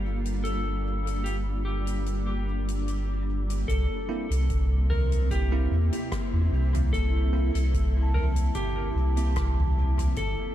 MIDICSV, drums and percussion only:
0, 0, Header, 1, 2, 480
1, 0, Start_track
1, 0, Tempo, 810811
1, 261, Time_signature, 4, 2, 24, 8
1, 6245, End_track
2, 0, Start_track
2, 0, Title_t, "Drums"
2, 151, Note_on_c, 9, 42, 52
2, 210, Note_off_c, 9, 42, 0
2, 265, Note_on_c, 9, 42, 47
2, 324, Note_off_c, 9, 42, 0
2, 634, Note_on_c, 9, 42, 55
2, 693, Note_off_c, 9, 42, 0
2, 744, Note_on_c, 9, 42, 49
2, 803, Note_off_c, 9, 42, 0
2, 1107, Note_on_c, 9, 42, 57
2, 1166, Note_off_c, 9, 42, 0
2, 1221, Note_on_c, 9, 42, 45
2, 1281, Note_off_c, 9, 42, 0
2, 1589, Note_on_c, 9, 42, 60
2, 1649, Note_off_c, 9, 42, 0
2, 1704, Note_on_c, 9, 42, 49
2, 1763, Note_off_c, 9, 42, 0
2, 2071, Note_on_c, 9, 42, 57
2, 2130, Note_off_c, 9, 42, 0
2, 2183, Note_on_c, 9, 36, 97
2, 2187, Note_on_c, 9, 42, 58
2, 2242, Note_off_c, 9, 36, 0
2, 2246, Note_off_c, 9, 42, 0
2, 2554, Note_on_c, 9, 42, 63
2, 2613, Note_off_c, 9, 42, 0
2, 2663, Note_on_c, 9, 36, 99
2, 2663, Note_on_c, 9, 42, 56
2, 2722, Note_off_c, 9, 36, 0
2, 2722, Note_off_c, 9, 42, 0
2, 2901, Note_on_c, 9, 45, 74
2, 2961, Note_off_c, 9, 45, 0
2, 3031, Note_on_c, 9, 42, 61
2, 3090, Note_off_c, 9, 42, 0
2, 3143, Note_on_c, 9, 36, 100
2, 3144, Note_on_c, 9, 42, 59
2, 3202, Note_off_c, 9, 36, 0
2, 3203, Note_off_c, 9, 42, 0
2, 3508, Note_on_c, 9, 42, 65
2, 3567, Note_off_c, 9, 42, 0
2, 3622, Note_on_c, 9, 36, 106
2, 3622, Note_on_c, 9, 37, 92
2, 3622, Note_on_c, 9, 42, 60
2, 3681, Note_off_c, 9, 42, 0
2, 3682, Note_off_c, 9, 36, 0
2, 3682, Note_off_c, 9, 37, 0
2, 3993, Note_on_c, 9, 45, 65
2, 3994, Note_on_c, 9, 42, 61
2, 4052, Note_off_c, 9, 45, 0
2, 4053, Note_off_c, 9, 42, 0
2, 4102, Note_on_c, 9, 36, 105
2, 4107, Note_on_c, 9, 42, 55
2, 4162, Note_off_c, 9, 36, 0
2, 4166, Note_off_c, 9, 42, 0
2, 4469, Note_on_c, 9, 42, 74
2, 4529, Note_off_c, 9, 42, 0
2, 4582, Note_on_c, 9, 36, 108
2, 4584, Note_on_c, 9, 42, 62
2, 4641, Note_off_c, 9, 36, 0
2, 4643, Note_off_c, 9, 42, 0
2, 4825, Note_on_c, 9, 45, 77
2, 4884, Note_off_c, 9, 45, 0
2, 4949, Note_on_c, 9, 42, 68
2, 5008, Note_off_c, 9, 42, 0
2, 5060, Note_on_c, 9, 42, 54
2, 5062, Note_on_c, 9, 36, 105
2, 5119, Note_off_c, 9, 42, 0
2, 5121, Note_off_c, 9, 36, 0
2, 5428, Note_on_c, 9, 42, 65
2, 5487, Note_off_c, 9, 42, 0
2, 5540, Note_on_c, 9, 42, 59
2, 5542, Note_on_c, 9, 36, 110
2, 5543, Note_on_c, 9, 37, 93
2, 5599, Note_off_c, 9, 42, 0
2, 5601, Note_off_c, 9, 36, 0
2, 5603, Note_off_c, 9, 37, 0
2, 5669, Note_on_c, 9, 45, 76
2, 5728, Note_off_c, 9, 45, 0
2, 5907, Note_on_c, 9, 45, 54
2, 5913, Note_on_c, 9, 42, 69
2, 5967, Note_off_c, 9, 45, 0
2, 5973, Note_off_c, 9, 42, 0
2, 6017, Note_on_c, 9, 42, 62
2, 6022, Note_on_c, 9, 36, 104
2, 6076, Note_off_c, 9, 42, 0
2, 6081, Note_off_c, 9, 36, 0
2, 6245, End_track
0, 0, End_of_file